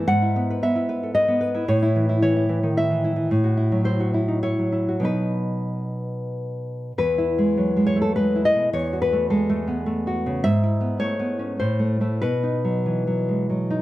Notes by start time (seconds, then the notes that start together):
0.08 G#2 F#5
0.22 E4
0.36 B3
0.50 B4
0.63 B3 E5
0.76 E4
0.89 B4
1.03 A4
1.15 B4 D#5
1.28 B3
1.41 B4
1.54 E4
1.68 A2 C#5
1.83 E4
1.96 E3
2.09 E4
2.22 E3 C#5
2.37 E4
2.49 E3
2.63 D#3
2.77 E4 E5
2.91 E3
3.04 E4
3.16 E3
3.31 A2
3.44 F#4
3.57 E4
3.72 F#3
3.84 E4 C5
4.00 F#4
4.14 E4
4.28 D#4
4.43 E4 C#5
4.58 F#3
4.72 E4
4.88 F#4
5.00 B2 F#3 D#4
5.05 B4
6.98 E2 B4
7.18 E4
7.38 G#3
7.57 F#3
7.77 G#3
7.87 C#5
7.96 A3
8.02 A4
8.16 G#3 B4
8.35 E4
8.45 D#5
8.55 B2
8.73 E2 C#5
8.93 F#4
9.02 B4
9.13 A3
9.30 G#3 A4
9.50 A3
9.67 B3
9.86 A3
10.07 F#4
10.26 C#3
10.44 G#2 E5
10.63 E4
10.81 B3
10.99 A3 C#5
11.19 B3
11.39 C#4
11.60 A2 C5
11.79 A3
12.01 A3 E4
12.22 B2 B4
12.43 D#4
12.64 F#3
12.86 E3
13.07 F#3
13.29 G#3
13.50 F#3
13.70 D#4